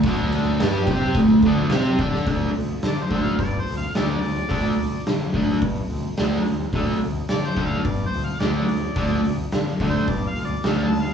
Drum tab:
CC |x-x-x-x-x-x-x-x-|----------------|----------------|----------------|
HH |----------------|o-o-o-o-o-o-o-o-|o-o-o-o-o-o-o-o-|o-o-o-o-o-o-o-o-|
SD |----o-------o--o|----o-------o---|----o-------o---|----o-------o---|
BD |o-----o-o-o---o-|o-----o-o-------|o-----o-o-------|o-----o-o-------|

CC |----------------|
HH |o-o-o-o-o-o-o-o-|
SD |----o-------o---|
BD |o-----o-o-------|